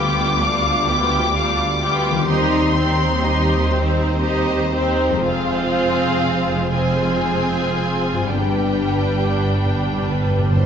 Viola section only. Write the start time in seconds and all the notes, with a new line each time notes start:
Already playing: B3 F4
0.41 G3 D4
0.88 B3 F4
1.35 G3 D4
1.82 B3 F4
2.27 D#4 G4
2.76 C4 D#4
3.24 D#4 G4
3.71 C4 D#4
4.21 D#4 G4
4.74 C4 D#4
5.26 C4 F4
6.73 C4 F4
8.29 G3 D4